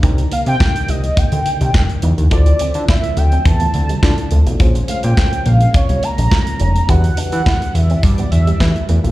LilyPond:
<<
  \new Staff \with { instrumentName = "Soft synth lead" } { \time 4/4 \key d \mixolydian \tempo 4 = 105 r8 f''16 g''8. ees''8 g''4. r8 | d''4 e''8 g''8 a''4. r8 | r8 f''16 g''8. f''8 des''8 bes''4. | fis''8. fis''8. e''8 d''8 e''4 r8 | }
  \new Staff \with { instrumentName = "FM electric piano" } { \time 4/4 \key d \mixolydian <d' ees' g' bes'>1 | <e' f' a' c''>2. <e' f' a' d''>4 | <des' f' aes' c''>1 | <d' fis' g' b'>2. <d' fis' g' b'>4 | }
  \new Staff \with { instrumentName = "Clean electric guitar" } { \time 4/4 \key d \mixolydian c'16 r16 bes16 r8. g16 r16 bes16 r8 d'16 r8 ees'16 r16 | d'16 r16 c'16 r16 e'16 r8 c'16 r16 a16 r16 g16 r8 a16 a16 | bes16 r16 a16 r8. bes16 r16 c'16 r8 d'16 r8 des'16 r16 | e'16 r16 d'16 r16 e'16 r8 c'16 r16 b16 r16 g16 r8 a16 a16 | }
  \new Staff \with { instrumentName = "String machine" } { \time 4/4 \key d \mixolydian <c ees bes d''>1 | <d f c' e''>1 | <aes bes des'>1 | <e g d' fis''>1 | }
  \new Staff \with { instrumentName = "Analog synth bass" } { \clef bass \time 4/4 \key d \mixolydian c,8 r16 c16 r8 c,8 r16 d,16 r16 c,16 g,,16 r16 e,16 ees,16 | d,8 r16 d16 r8 d,8 e,8 d,8 d16 r16 d,16 b,,16 | bes,,8 r16 bes,16 r8 bes,,8 r16 c,16 r16 bes,,16 r8 f,,8 | e,8 r16 e16 r8 e,8 g,8 e,8 e16 r16 e,16 bes,,16 | }
  \new DrumStaff \with { instrumentName = "Drums" } \drummode { \time 4/4 <hh bd>16 hh16 hh16 hh16 <hc bd sn>16 hh16 hh16 hh16 <hh bd>16 hh16 hh16 hh16 <hc bd sn>16 hh16 hh16 hh16 | <hh bd>16 hh16 hh16 hh16 <hc bd sn>16 hh16 hh16 hh16 <hh bd>16 hh16 hh16 hh16 <hc bd sn>16 hh16 hh16 hh16 | <hh bd>16 hh16 hh16 hh16 <hc bd sn>16 hh16 hh16 hh16 <hh bd>16 hh16 hh16 hh16 <hc bd sn>16 hh16 hh16 hh16 | <hh bd>16 hh16 hh16 hh16 <hc bd sn>16 hh16 hh16 hh16 <hh bd>16 hh16 hh16 hh16 <hc bd sn>16 hh16 hh16 hh16 | }
>>